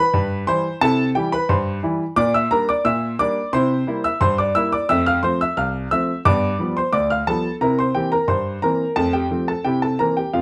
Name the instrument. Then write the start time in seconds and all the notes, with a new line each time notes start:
grand piano
Already playing: B4 B5
0.14 G2
0.47 E3 G3 E4 C5 C6
0.81 C3 E4 A4 A5
1.15 E3 G3 E4 G4 G5
1.32 B4 B5
1.49 G2 C5 C6
1.83 E3 G3 E4
2.16 A#2 D5 D6
2.34 E5 E6
2.51 G3 A#3 D4 A#4 A#5
2.69 D5 D6
2.85 A#2 E5 E6
3.19 G3 A#3 D4 D5 D6
3.53 C3 E4 C5 C6
3.87 G3 A#3 E4
4.04 E5 E6
4.21 G2 C5 C6
4.38 D5 D6
4.55 G3 A#3 E4 E5 E6
4.72 D5 D6
4.89 F2 A3 E5 E6
5.06 F5 F6
5.23 F3 A3 C4 C5 C6
5.41 E5 E6
5.57 C2 F5 F6
5.91 F3 A3 C4 E5 E6
6.25 G2 B3 D5 D6
6.59 F3 G3 B3
6.77 C5 C6
6.93 D2 D5 D6
7.10 F5 F6
7.27 F3 G3 B3 A4 A5
7.61 C3 E4 A#4 A#5
7.79 C5 C6
7.95 E3 A#3 C4 G4 G5
8.12 A#4 A#5
8.28 G2 C5 C6
8.62 E3 A#3 C4 A#4 A#5
8.96 F2 A3 A4 A5
9.13 G4 G5
9.31 F3 A3 C4
9.48 A4 A5
9.64 C3 E4 G4 G5
9.82 A4 A5
9.99 E3 A#3 C4 A#4 A#5
10.17 G4 G5
10.33 F2 A3 F4 F5